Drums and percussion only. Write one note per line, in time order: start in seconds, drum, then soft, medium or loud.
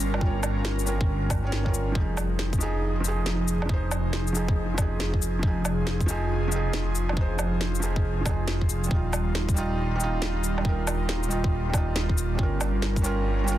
0.00 shaker medium
0.14 low woodblock soft
0.21 kick loud
0.43 low woodblock medium
0.43 shaker medium
0.65 snare medium
0.79 shaker soft
0.87 shaker medium
1.01 kick loud
1.30 kick loud
1.30 low woodblock medium
1.30 shaker medium
1.52 snare loud
1.66 kick medium
1.74 shaker medium
1.95 kick loud
2.17 low woodblock medium
2.17 shaker medium
2.39 snare loud
2.53 kick loud
2.53 shaker soft
2.61 shaker medium
3.05 shaker medium
3.26 snare loud
3.48 shaker medium
3.62 low woodblock medium
3.69 kick loud
3.91 low woodblock medium
3.91 shaker medium
4.13 snare loud
4.27 shaker soft
4.35 shaker medium
4.48 kick loud
4.78 kick loud
4.78 low woodblock soft
4.78 shaker medium
5.00 snare loud
5.14 kick medium
5.22 shaker medium
5.43 kick loud
5.65 low woodblock medium
5.65 shaker medium
5.87 snare loud
6.01 kick loud
6.01 shaker soft
6.08 shaker medium
6.52 shaker medium
6.73 snare loud
6.95 shaker medium
7.09 low woodblock soft
7.17 kick loud
7.39 low woodblock medium
7.39 shaker medium
7.61 snare loud
7.75 shaker soft
7.82 shaker medium
7.96 kick loud
8.26 kick loud
8.26 low woodblock soft
8.26 shaker soft
8.48 snare loud
8.61 kick medium
8.69 shaker medium
8.84 shaker soft
8.91 kick loud
9.13 low woodblock medium
9.13 shaker medium
9.35 snare loud
9.49 kick loud
9.49 shaker soft
9.57 shaker medium
10.00 shaker soft
10.22 snare loud
10.44 shaker medium
10.58 low woodblock soft
10.65 kick loud
10.87 low woodblock medium
10.87 shaker medium
11.09 snare loud
11.23 shaker soft
11.31 shaker soft
11.44 kick loud
11.74 kick loud
11.74 low woodblock soft
11.74 shaker medium
11.96 snare loud
12.09 kick medium
12.18 shaker medium
12.39 kick loud
12.61 low woodblock medium
12.61 shaker medium
12.82 snare medium
12.96 kick medium
12.96 shaker soft
13.04 shaker medium
13.48 shaker medium